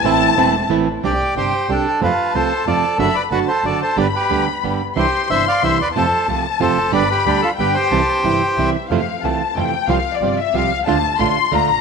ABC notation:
X:1
M:3/4
L:1/16
Q:1/4=183
K:Am
V:1 name="Violin section"
a8 z4 | [K:C] g12 | a12 | b4 a8 |
b8- b2 z2 | c'12 | a12 | b8 g4 |
a4 g4 e4 | [K:F] f4 a4 g4 | f3 d3 e2 f3 z | a4 c'4 b4 |]
V:2 name="Bandoneon"
z12 | [K:C] [Gd]4 [Gc]4 [DA]4 | [FB]4 [Ac]4 [Ad]4 | [Ae]2 [Bd]2 [^FB]2 [Ac]2 [Ad]2 [Ac]2 |
[Bd]2 [GB]4 z6 | [Gc]4 [ce]2 [df]2 [ce]2 [Bd]2 | [Ac]4 z4 [Ac]4 | [Bd]2 [GB]2 [DG]2 [FA]2 [GB]2 [Gc]2- |
[Gc]8- [Gc]2 z2 | [K:F] z12 | z12 | z12 |]
V:3 name="String section"
[A,CE]4 [A,CE]4 [A,CE]4 | [K:C] z12 | z12 | z12 |
z12 | z12 | z12 | z12 |
z12 | [K:F] [F,A,E]2 z2 [F,A,E]2 z2 [F,A,E]2 z2 | [G,CF]2 z2 [G,CF]2 z2 [G,CF]2 z2 | [A,DF]2 z2 [A,DF]2 z2 [A,DF]2 z2 |]
V:4 name="Nylon-string guitar"
[E,A,CE]4 [E,A,CE]2 z2 [E,A,CE]2 z2 | [K:C] [C,G,CDG]2 z2 [C,G,CDG]2 z2 [C,G,CDG]2 z2 | [C,F,A,CF]2 z2 [C,F,A,CF]2 z2 [C,F,A,CF]2 z2 | [D,A,D^F]2 z2 [D,A,DF]2 z2 [D,A,DF]2 z2 |
[D,G,B,DG]2 z2 [D,G,B,DG]2 z2 [D,G,B,DG]2 z2 | [C,E,G,DE]2 z2 [C,E,G,DE]2 z2 [C,E,G,DE]2 z2 | [C,F,A,CF]2 z2 [C,F,A,CF]2 z2 [C,F,A,CF]2 z2 | [D,G,B,DG]2 z2 [D,G,B,DG]2 z2 [D,G,B,DG]2 z2 |
[C,E,G,CE]2 z2 [C,E,G,CE]2 z2 [C,E,G,CE]2 z2 | [K:F] [C,E,A,CF]2 z2 [C,E,A,CF]2 z2 [C,E,A,CF]2 z2 | [C,F,G,CF]2 z2 [C,F,G,CF]2 z2 [C,F,G,CF]2 z2 | [D,A,DF]2 z2 [D,A,DF]2 z2 [D,A,DF]2 z2 |]
V:5 name="Double bass" clef=bass
A,,,4 E,,,4 A,,,4 | [K:C] C,,2 z2 G,,,2 z2 C,,2 z2 | F,,2 z2 C,,2 z2 F,,2 z2 | ^F,,,2 z2 F,,,2 z2 F,,,2 z2 |
G,,,2 z2 D,,2 z2 G,,,2 z2 | C,,2 z2 G,,,2 z2 C,,2 _E,,2 | F,,2 z2 C,,2 z2 F,,2 F,,,2 | G,,,2 z2 D,,2 z2 G,,,2 z2 |
C,,2 z2 G,,,2 z2 C,,2 z2 | [K:F] F,,2 z2 C,,2 z2 F,,2 z2 | C,,2 z2 G,,,2 z2 C,,2 C,,2 | D,,2 z2 A,,,2 z2 D,,2 B,,,2 |]